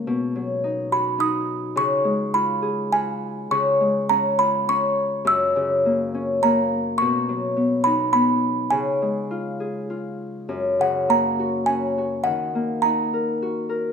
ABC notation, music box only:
X:1
M:3/4
L:1/8
Q:1/4=103
K:F#
V:1 name="Music box"
z3 b d'2 | c'2 b2 g2 | c'2 a b c'2 | =e'4 a2 |
c'3 b b2 | g4- g z | z f a2 g2 | f2 a2 z2 |]